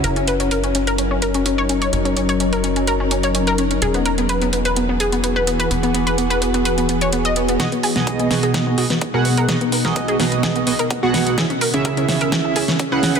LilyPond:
<<
  \new Staff \with { instrumentName = "Analog polysynth" } { \time 4/4 \key b \major \tempo 4 = 127 r1 | r1 | r1 | r1 |
<b, b fis' gis' dis''>16 r8 <b, b fis' gis' dis''>8. <b, b fis' gis' dis''>4 <b, b fis' gis' dis''>16 r8 <b, b fis' gis' fis''>8. | <b, b fis' gis' dis''>16 r8 <b, b fis' gis' dis''>8. <b, b fis' gis' dis''>4 <b, b fis' gis' dis''>16 r8 <b, b fis' gis' fis''>8. | <cis cis' e' gis' e''>16 r8 <cis cis' e' gis' e''>8. <cis cis' e' gis' e''>4 <cis cis' e' gis' e''>16 r8 <cis cis' e' gis' fis''>8. | }
  \new Staff \with { instrumentName = "Ambient pad" } { \time 4/4 \key b \major << { ais'1~ | ais'1 | gis'1~ | gis'1 |
gis'1 | ais'1 | gis'1 | } \\ { <fis cis' dis'>1~ | <fis cis' dis'>1 | <e b fis'>1~ | <e b fis'>1 |
<b, b dis'>1~ | <b, b dis'>1 | <cis cis' e'>1 | } >> }
  \new Staff \with { instrumentName = "Synth arpeggio sound" } { \time 4/4 \key b \major ais'16 cis'16 b'16 cis'16 ais'16 cis'16 cis'16 ais'16 cis'16 cis'16 ais'16 cis'16 cis'16 cis''16 cis'16 cis''16 | cis'16 cis'16 cis'16 cis''16 cis'16 ais'16 cis'16 cis'16 ais'16 cis'16 cis'16 cis''16 cis'16 ais'16 cis'16 cis'16 | gis'16 b16 ais'16 b16 b'16 b16 b16 b'16 b16 b16 gis'16 b16 b16 b'16 b16 b'16 | b16 b16 b16 b'16 b16 b'16 b16 b16 b'16 b16 b16 cis''16 b16 dis''16 b16 b16 |
fis'16 b16 gis'16 b16 gis'16 b16 b16 gis'16 b16 b16 fis'16 b16 b16 ais'16 b16 ais'16 | b16 b16 b16 ais'16 b16 gis'16 b16 b16 gis'16 b16 b16 ais'16 b16 fis'16 b16 b16 | gis'16 cis'16 ais'16 cis'16 ais'16 cis'16 cis'16 ais'16 cis'16 cis'16 gis'16 cis'16 cis'16 b'16 cis'16 b'16 | }
  \new Staff \with { instrumentName = "Analog synth bass" } { \clef bass \time 4/4 \key b \major fis,,1 | fis,,1 | e,,1 | e,,1 |
r1 | r1 | r1 | }
  \new DrumStaff \with { instrumentName = "Drums" } \drummode { \time 4/4 hh16 hh16 hh16 hh16 hh16 hh16 hh16 hh16 hh8 hh16 hh16 hh8 hh16 hh16 | hh16 hh16 hh16 hh16 hh16 hh16 hh16 hh16 hh8 hh16 hh16 hh16 hh16 hh16 hh16 | hh16 hh16 hh16 hh16 hh16 hh16 hh16 hh16 hh8 hh16 hh16 hh8 hh16 hh16 | hh16 hh16 hh16 hh16 hh16 hh16 hh16 hh16 hh16 hh16 hh16 hh16 hh16 hh16 hh16 hh16 |
<hh bd sn>16 hh16 hho16 <hh sn>16 <hh bd>16 hh16 <hho bd sn>16 hh16 <hh bd sn>8 hho16 <hh sn>16 <hh bd>8 hho16 hh16 | <hh bd sn>16 hh16 hho16 sn16 <hh bd>16 hh16 <hho bd sn>16 hh16 <hh bd sn>16 hh16 hho16 hh16 <hh bd>8 <hho sn>16 hh16 | <hh bd sn>16 hh16 hho16 hh16 <hh bd>16 hh16 <hho bd sn>16 hh16 <hh bd sn>8 hho16 <hh sn>16 <hh bd>8 <hho sn>16 hh16 | }
>>